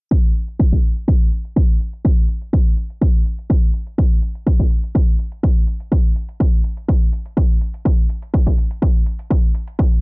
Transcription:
0.11 kick, closed hi-hat
0.24 closed hi-hat
0.35 closed hi-hat
0.48 closed hi-hat
0.59 kick, closed hi-hat
0.72 kick, closed hi-hat
0.83 closed hi-hat
0.96 closed hi-hat
1.08 kick, closed hi-hat
1.21 closed hi-hat
1.32 closed hi-hat
1.45 closed hi-hat
1.56 kick, closed hi-hat
1.69 closed hi-hat
1.80 closed hi-hat
1.93 closed hi-hat
2.05 kick, closed hi-hat
2.17 closed hi-hat
2.29 closed hi-hat
2.42 closed hi-hat
2.53 kick, closed hi-hat
2.66 closed hi-hat
2.77 closed hi-hat
2.90 closed hi-hat
3.01 kick, closed hi-hat
3.14 closed hi-hat
3.26 closed hi-hat
3.38 closed hi-hat
3.50 kick, closed hi-hat
3.74 closed hi-hat
3.87 closed hi-hat
3.98 kick, closed hi-hat
4.11 closed hi-hat
4.22 closed hi-hat
4.35 closed hi-hat
4.46 kick, closed hi-hat
4.59 kick, closed hi-hat
4.71 closed hi-hat
4.83 closed hi-hat
4.95 kick, closed hi-hat
5.08 closed hi-hat
5.19 closed hi-hat
5.32 closed hi-hat
5.43 kick, closed hi-hat
5.56 closed hi-hat
5.67 closed hi-hat
5.80 closed hi-hat
5.92 kick, closed hi-hat
6.04 closed hi-hat
6.16 closed hi-hat
6.29 closed hi-hat
6.40 kick, closed hi-hat
6.53 closed hi-hat
6.64 closed hi-hat
6.77 closed hi-hat
6.88 kick, closed hi-hat
7.01 closed hi-hat
7.13 closed hi-hat
7.26 closed hi-hat
7.37 kick, closed hi-hat
7.50 closed hi-hat
7.61 closed hi-hat
7.74 closed hi-hat
7.85 kick, closed hi-hat
7.98 closed hi-hat
8.09 closed hi-hat
8.22 closed hi-hat
8.34 kick, closed hi-hat
8.46 kick, closed hi-hat
8.58 closed hi-hat
8.71 closed hi-hat
8.82 kick, closed hi-hat
8.95 closed hi-hat
9.06 closed hi-hat
9.19 closed hi-hat
9.30 kick, closed hi-hat
9.43 closed hi-hat
9.55 closed hi-hat
9.67 closed hi-hat
9.79 kick, closed hi-hat
9.92 closed hi-hat

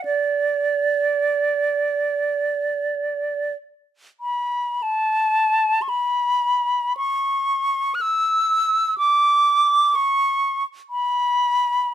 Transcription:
0.05 D5
4.20 B5
4.83 A5
5.82 C#6
5.89 B5
6.97 C#6
7.95 F#6
8.01 E6
8.98 D6
9.95 C#6
10.90 B5

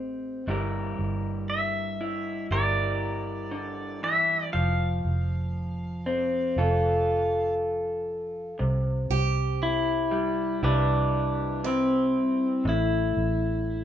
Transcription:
Already playing: A1 A2 C4 G4 C5
0.47 G1 G2 G3 E4 G4 A#4
0.99 G1
1.50 E5
2.01 E4
2.51 G1 E4 G4 A#4 D5
3.51 D3
4.03 E3 E5
4.53 F1 F3 F5
5.05 F1
6.06 C4
6.56 F1 F4 A4
8.59 C2 C3
9.10 C2 G4
9.63 E4
10.11 G3
10.63 C2 D4 E4 G4 B4
11.64 C3 C4 E4
12.65 A1 A2 E4
13.17 A1

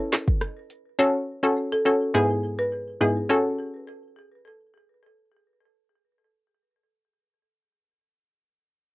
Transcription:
Already playing: C#4 E4 A4
0.12 snare, clap, closed hi-hat
0.28 kick
0.41 cross-stick, closed hi-hat
0.70 closed hi-hat
0.99 C#4 F#4 A4 C#5
1.43 C#4 F#4 A4
1.72 A4
1.85 C#4 F#4 A4
2.14 G#2 B3 E4 G#4
2.59 B4
3.01 G#2 B3 E4 G#4
3.29 C#4 F#4 A4

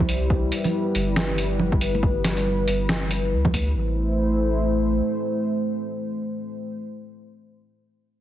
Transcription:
Already playing: C2 G3 E4 C5
0.09 closed hi-hat
0.30 B4, kick
0.52 closed hi-hat
0.64 closed hi-hat, low conga
0.95 G1, closed hi-hat
1.16 snare
1.38 closed hi-hat
1.59 low conga
1.72 kick
1.81 G1, closed hi-hat
1.95 high conga
2.03 kick, high conga
2.24 snare, closed hi-hat
2.37 closed hi-hat
2.68 G1, closed hi-hat
2.89 snare
3.11 closed hi-hat
3.32 D2
3.45 kick, low conga
3.54 kick, closed hi-hat, high conga
3.75 A1 A3 E4 C5

